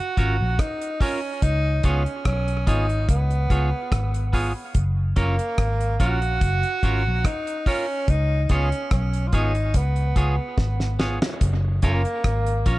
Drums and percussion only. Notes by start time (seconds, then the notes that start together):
0.17 kick, closed hi-hat
0.59 kick, cross-stick, closed hi-hat
0.82 closed hi-hat
1.01 kick, open hi-hat
1.42 kick, closed hi-hat
1.83 kick, closed hi-hat
2.06 closed hi-hat
2.25 kick, cross-stick, closed hi-hat
2.48 closed hi-hat
2.67 kick, closed hi-hat
2.89 closed hi-hat
3.09 kick, closed hi-hat
3.31 closed hi-hat
3.50 kick, closed hi-hat
3.92 kick, cross-stick, closed hi-hat
4.14 closed hi-hat
4.33 kick, open hi-hat
4.75 kick, closed hi-hat
5.16 kick, closed hi-hat
5.39 closed hi-hat
5.58 kick, cross-stick, closed hi-hat
5.81 closed hi-hat
6.00 kick, closed hi-hat
6.22 closed hi-hat
6.41 kick, closed hi-hat
6.63 closed hi-hat
6.83 kick, closed hi-hat
7.25 kick, cross-stick, closed hi-hat
7.47 closed hi-hat
7.66 kick, open hi-hat
8.08 kick, closed hi-hat
8.49 kick, closed hi-hat
8.72 closed hi-hat
8.91 kick, cross-stick, closed hi-hat
9.13 closed hi-hat
9.33 kick, closed hi-hat
9.55 closed hi-hat
9.74 kick, closed hi-hat
9.96 closed hi-hat
10.16 kick, closed hi-hat
10.58 kick, snare
10.80 snare
11.00 snare
11.22 snare
11.41 kick, closed hi-hat
11.82 kick, closed hi-hat
12.05 closed hi-hat
12.24 kick, cross-stick, closed hi-hat
12.46 closed hi-hat
12.66 kick, closed hi-hat